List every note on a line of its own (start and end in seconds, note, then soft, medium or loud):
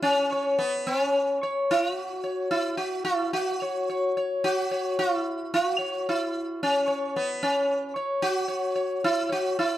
0.02 0.61 C#4 medium
0.32 0.58 C#5 soft
0.59 0.88 B3 medium
0.87 1.38 C#4 medium
1.43 1.68 C#5 soft
1.71 1.94 E4 medium
1.94 2.48 F#4 medium
2.24 2.50 C#5 soft
2.51 2.77 E4 medium
2.77 3.04 F#4 medium
3.05 3.33 E4 medium
3.33 4.11 F#4 medium
3.62 3.87 C#5 soft
3.89 4.14 C#5 soft
4.17 4.42 C#5 soft
4.44 4.98 F#4 medium
4.71 4.96 C#5 soft
4.99 5.14 F4 medium
5.14 5.53 E4 medium
5.54 5.69 F4 medium
5.69 6.08 F#4 medium
5.79 6.04 C#5 soft
6.09 6.62 E4 medium
6.63 7.17 C#4 medium
6.88 7.13 C#5 soft
7.16 7.43 B3 medium
7.43 7.92 C#4 medium
7.96 8.21 C#5 soft
8.22 9.04 F#4 loud
8.48 8.74 C#5 soft
8.76 9.01 C#5 soft
9.04 9.31 E4 medium
9.29 9.58 F#4 medium
9.29 9.55 C#5 soft
9.59 9.78 E4 medium